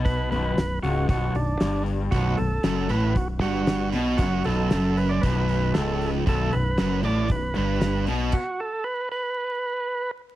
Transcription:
<<
  \new Staff \with { instrumentName = "Tonewheel organ" } { \time 4/4 \key b \minor \tempo 4 = 116 b'8 b'4 fis'8 fis'8 d'4 r8 | fis'8 a'4 b'8 fis'8 fis'4 r8 | fis'8 a'4 b'16 d''16 b'4 a'8. r16 | a'8 b'4 d''8 b'8 b'4 r8 |
fis'8 a'8 b'8 b'2 r8 | }
  \new Staff \with { instrumentName = "Distorted electric guitar" } { \clef bass \time 4/4 \key b \minor r1 | b,,8 b,,8 fis,8 a,8 b,,8 g,4 b,8 | fis,8 b,,8 fis,4 b,,4 cis,4 | b,,8 b,,8 fis,8 a,8 b,,8 g,4 b,8 |
r1 | }
  \new Staff \with { instrumentName = "Overdriven electric guitar" } { \clef bass \time 4/4 \key b \minor b,8 b,,8 b,,8 cis,8 b,,8 b,,8 g,4 | b,,8 b,,8 fis,8 a,8 b,,8 g,4 b,8 | fis,8 b,,8 fis,4 b,,4 cis,4 | b,,8 b,,8 fis,8 a,8 b,,8 g,4 b,8 |
r1 | }
  \new Staff \with { instrumentName = "Fingered electric bass" } { \clef bass \time 4/4 \key b \minor b,,8 b,,,8 b,,,8 cis,,8 b,,,8 b,,,8 g,,4 | b,,,8 b,,,8 fis,,8 a,,8 b,,,8 g,,4 b,,8 | fis,,8 b,,,8 fis,,4 b,,,4 cis,,4 | b,,,8 b,,,8 fis,,8 a,,8 b,,,8 g,,4 b,,8 |
r1 | }
  \new DrumStaff \with { instrumentName = "Drums" } \drummode { \time 4/4 <hho bd>8 hho8 <hho sn>8 hho8 <hho bd>8 hho8 <hho sn>8 hho8 | <hho bd>8 hho8 <hho sn>8 hho8 <hho bd>8 <hho sn>8 <hho sn>8 hho8 | <hho bd>8 hho8 <hho sn>8 hho8 <hho bd>8 hho8 <hho sn>8 hho8 | <hho bd>8 hho8 <hho sn>8 hho8 <hho bd>8 hho8 <hho sn>8 hho8 |
<cymc bd>4 r4 r4 r4 | }
>>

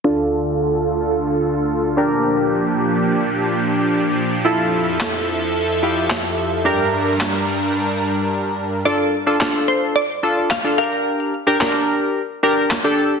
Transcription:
<<
  \new Staff \with { instrumentName = "Synth pluck" } { \time 4/4 \key d \minor \tempo 4 = 109 r1 | r1 | r1 | r1 |
d''4. c''8 d''4 f''8 f''8~ | f''2.~ f''8 r8 | }
  \new Staff \with { instrumentName = "Synth keys" } { \time 4/4 \key d \minor <d' f' a'>2.~ <d' f' a'>8 <d' g' bes'>8~ | <d' g' bes'>2.~ <d' g' bes'>8 r8 | <e' f' a'>2~ <e' f' a'>8 <e' f' g'>4. | <d' g' bes'>1 |
<d' f' a'>8 r16 <d' f' a'>16 <d' f' a'>4 r8 <d' f' a'>8 r16 <d' f' a'>16 <d' g' bes'>8~ | <d' g' bes'>8 r16 <d' g' bes'>16 <d' g' bes'>4 r8 <d' g' bes'>8 r16 <d' g' a'>8 r16 | }
  \new Staff \with { instrumentName = "Supersaw synth" } { \time 4/4 \key d \minor << { <d, f' a'>2.~ <d, f' a'>8 <bes, d' g'>8~ | <bes, d' g'>1 | <f, a' e''>1 | <g, d' bes'>1 |
r1 | r1 | } \\ { d2.~ d8 f8~ | f1~ | f1 | g1 |
r1 | r1 | } >> }
  \new DrumStaff \with { instrumentName = "Drums" } \drummode { \time 4/4 r4 r4 r4 r4 | r4 r4 r4 r4 | r4 <hc sn>4 r4 <hc sn>4 | r4 <hc sn>4 r4 r4 |
r4 <hc sn>4 r4 <hc sn>4 | r4 <hc sn>4 r4 <hc sn>4 | }
>>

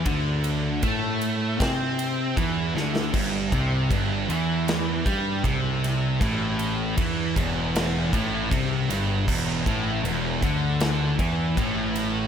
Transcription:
<<
  \new Staff \with { instrumentName = "Distorted electric guitar" } { \clef bass \time 4/4 \key a \dorian \tempo 4 = 78 d4 a4 c'4 e8 d8 | g,8 c8 g,8 e4 g8 c4 | a,4 e8 e,4 a,8 c8 g,8 | e,8 a,8 e,8 d4 e8 a,4 | }
  \new Staff \with { instrumentName = "Distorted electric guitar" } { \clef bass \time 4/4 \key a \dorian d4 a4 c'4 e8 d8 | g,8 c8 g,8 e4 g8 c4 | a,4 e8 e,4 a,8 c8 g,8 | e,8 a,8 e,8 d4 e8 a,4 | }
  \new Staff \with { instrumentName = "Distorted electric guitar" } { \clef bass \time 4/4 \key a \dorian d4 a4 c'4 e8 d8 | g,8 c8 g,8 e4 g8 c4 | a,4 e8 e,4 a,8 c8 g,8 | e,8 a,8 e,8 d4 e8 a,4 | }
  \new Staff \with { instrumentName = "Picked electric bass" } { \clef bass \time 4/4 \key a \dorian d,4 a,4 c4 e,8 d,8 | g,,8 c,8 g,,8 e,4 g,8 c,4 | a,,4 e,8 e,,4 a,,8 c,8 g,,8 | e,,8 a,,8 e,,8 d,4 e,8 a,,4 | }
  \new DrumStaff \with { instrumentName = "Drums" } \drummode { \time 4/4 <bd cymr>8 cymr8 <bd cymr>8 cymr8 <bd cymr sn>8 cymr8 <bd cymr>8 sn16 sn16 | <cymc bd>8 <bd cymr>8 <bd cymr>8 cymr8 <cymr sn>8 <bd cymr>8 <bd cymr>8 <cymr sn>8 | <bd cymr>8 cymr8 <bd cymr>8 <bd cymr>8 <cymr sn>8 <bd cymr>8 <bd cymr>8 <cymr sn>8 | <cymc bd>8 <bd cymr>8 cymr8 <bd cymr>8 <cymr sn>8 <bd cymr>8 <bd cymr>8 <cymr sn>8 | }
>>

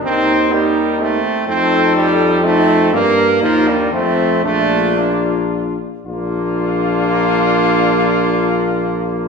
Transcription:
<<
  \new Staff \with { instrumentName = "Cornet" } { \time 3/4 \key bes \major \tempo 4 = 114 bes'4 bes'4. r8 | a'2 a'4 | bes'4 bes'4 f'4 | f'4 f'4. r8 |
f'2.~ | f'2. | }
  \new Staff \with { instrumentName = "French horn" } { \time 3/4 \key bes \major ees'4 ees'4. r8 | ees'2 ees'4 | d'4 ees'8 d'8 c'4 | d'4 d'4. r8 |
d'2.~ | d'2. | }
  \new Staff \with { instrumentName = "Trumpet" } { \time 3/4 \key bes \major ees'4 ees'4 c'4 | a4. r8 c'4 | bes2 c'4 | d'2~ d'8 r8 |
d'2.~ | d'2. | }
  \new Staff \with { instrumentName = "Trombone" } { \time 3/4 \key bes \major c'4 g4 a4 | c'4 g4 a4 | bes4 f8 g8 a4 | a4 bes4 r4 |
bes2.~ | bes2. | }
  \new Staff \with { instrumentName = "Bass trombone" } { \clef bass \time 3/4 \key bes \major ees,2~ ees,8 r8 | f,2. | g,4 ees,4 f,4 | bes,,2~ bes,,8 r8 |
bes,,2.~ | bes,,2. | }
>>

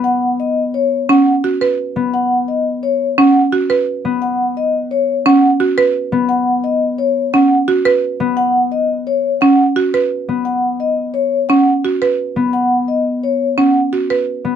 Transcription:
<<
  \new Staff \with { instrumentName = "Vibraphone" } { \time 6/4 \key b \major \tempo 4 = 173 fis''8 r8 dis''8 r8 cis''8 r8 fis''8 r2 r8 | fis''8 r8 dis''8 r8 cis''8 r8 fis''8 r2 r8 | fis''8 r8 dis''8 r8 cis''8 r8 fis''8 r2 r8 | fis''8 r8 dis''8 r8 cis''8 r8 fis''8 r2 r8 |
fis''8 r8 dis''8 r8 cis''8 r8 fis''8 r2 r8 | fis''8 r8 dis''8 r8 cis''8 r8 fis''8 r2 r8 | fis''8 r8 dis''8 r8 cis''8 r8 fis''8 r2 r8 | }
  \new Staff \with { instrumentName = "Marimba" } { \time 6/4 \key b \major r2. cis'8 r8 fis'8 b'8 r4 | r2. cis'8 r8 fis'8 b'8 r4 | r2. cis'8 r8 fis'8 b'8 r4 | r2. cis'8 r8 fis'8 b'8 r4 |
r2. cis'8 r8 fis'8 b'8 r4 | r2. cis'8 r8 fis'8 b'8 r4 | r2. cis'8 r8 fis'8 b'8 r4 | }
  \new Staff \with { instrumentName = "Harp" } { \time 6/4 \key b \major b1~ b4. b8~ | b1~ b4. b8~ | b1~ b4. b8~ | b1~ b4. b8~ |
b1~ b4. b8~ | b1~ b4. b8~ | b1~ b4. b8 | }
>>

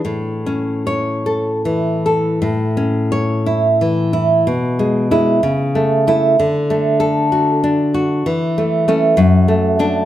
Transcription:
\new Staff \with { instrumentName = "Nylon-string guitar" } { \time 6/8 \key a \major \tempo 4. = 62 << { r4 cis''4 r4 | r4 cis''4 r4 | r4 e'8 r4 e'8 | r4 a'4 r4 |
r4 cis'8 r4 d'8 | } \\ { a,8 cis'4 a'8 e8 a'8 | a,8 cis'4 e'8 e8 e'8 | b,8 gis8 gis8 cis8 a8 a8 | d8 a4 fis'8 d'8 fis'8 |
e8 a8 a8 fis,8 a8 a8 | } >> }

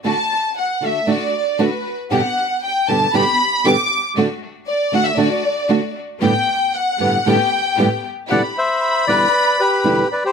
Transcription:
<<
  \new Staff \with { instrumentName = "Violin section" } { \time 4/4 \key g \major \tempo 4 = 116 a''4 fis''8 e''8 d''4 b'8. r16 | fis''4 g''8 a''8 b''4 d'''8. r16 | r4 d''8 fis''16 e''16 d''4. r8 | g''4 fis''4 g''4. r8 |
\key e \minor b''1 | }
  \new Staff \with { instrumentName = "Bandoneon" } { \time 4/4 \key g \major r1 | r1 | r1 | r1 |
\key e \minor <d'' fis''>8 <c'' e''>4 <b' d''>4 <g' b'>4 <b' d''>16 <g' c''>16 | }
  \new Staff \with { instrumentName = "String section" } { \time 4/4 \key g \major <a d' fis'>8 r4 <a d' fis'>8 <a d' fis'>8 r8 <a d' fis'>8 r8 | <b d' g'>8 r4 <b d' g'>8 <b d' g'>8 r8 <b d' g'>8 r8 | <a d' fis'>8 r4 <a d' fis'>8 <a d' fis'>8 r8 <a d' fis'>8 r8 | <a b g'>8 r4 <a b g'>8 <a b g'>8 r8 <a b g'>8 r8 |
\key e \minor <d' e' g'>8 r4 <d' e' g'>8 r4 <d' e' g'>8 r8 | }
  \new Staff \with { instrumentName = "Nylon-string guitar" } { \clef bass \time 4/4 \key g \major <d a d' fis'>8 r4 <d a d' fis'>8 <d a d' fis'>8 r8 <d a d' fis'>8 r8 | <g, b, d g b g'>8 r4 <g, b, d g b g'>8 <g, b, d g b g'>8 r8 <g, b, d g b g'>8 r8 | <d a d' fis'>8 r4 <d a d' fis'>8 <d a d' fis'>8 r8 <d a d' fis'>8 r8 | <g, a, d g b g'>8 r4 <g, a, d g b g'>8 <g, a, d g b g'>8 r8 <g, a, d g b g'>8 r8 |
\key e \minor <e, b, d g b e'>8 r4 <e, b, d g b e'>8 r4 <e, b, d g b e'>8 r8 | }
>>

